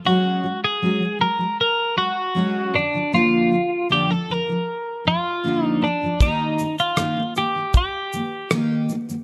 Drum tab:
SH |----------------|----------------|x-xxx-x-x-x-x-xx|
SD |----------------|----------------|----r-r-----r---|
BD |----------------|----------------|o-------o-------|